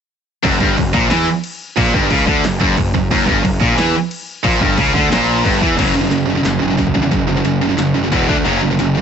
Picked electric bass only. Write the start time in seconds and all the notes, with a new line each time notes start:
0.44 F#1
0.61 G1
0.78 F#1
0.94 A#1
1.11 E2
1.77 A#1
1.94 G1
2.11 C#2
2.27 D2
2.47 F#1
2.60 F#1
2.78 F#1
2.94 F#1
3.11 F#1
3.27 G1
3.44 F#1
3.61 A#1
3.79 E2
4.44 A#1
4.61 G1
4.78 C#2
4.95 D2
5.10 A#1
5.45 G1
5.62 E2
5.78 F#1
5.95 F#1
6.11 F#1
6.46 F#1
6.62 F#1
6.78 F#1
6.95 E2
7.12 F#1
7.29 F#1
7.45 F#1
7.78 F#1
7.96 F#1
8.12 E1
8.29 D2
8.46 F#1
8.63 F#1
8.80 F#1